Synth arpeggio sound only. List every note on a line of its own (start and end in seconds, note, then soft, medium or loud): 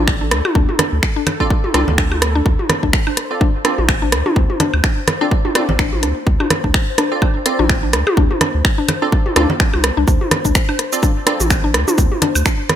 0.21 0.28 D4 medium
0.55 0.64 D4 loud
0.79 0.88 D4 medium
1.16 1.23 D4 loud
1.40 1.47 D4 medium
1.74 1.83 D4 loud
1.98 2.07 D4 medium
2.35 2.42 D4 loud
2.46 2.54 D4 medium
2.83 2.90 D4 loud
3.07 3.14 D4 medium
3.41 3.50 D4 medium
3.65 3.74 D4 medium
4.02 4.09 D4 loud
4.26 4.33 D4 medium
4.60 4.69 D4 loud
4.84 4.93 D4 medium
5.21 5.28 D4 loud
5.45 5.52 D4 medium
5.79 5.88 D4 loud
6.03 6.12 D4 medium
6.40 6.47 D4 loud
6.64 6.71 D4 medium
6.98 7.07 D4 loud
7.22 7.31 D4 medium
7.59 7.66 D4 loud
7.83 7.90 D4 medium
8.17 8.26 D4 loud
8.41 8.50 D4 medium
8.78 8.85 D4 loud
9.02 9.09 D4 medium
9.36 9.45 D4 medium
9.60 9.69 D4 medium
9.97 10.04 D4 loud
10.08 10.16 D4 medium
10.45 10.52 D4 loud
10.69 10.75 D4 medium
11.03 11.12 D4 medium
11.27 11.35 D4 medium
11.64 11.71 D4 loud
11.88 11.94 D4 medium
12.22 12.31 D4 loud
12.46 12.54 D4 medium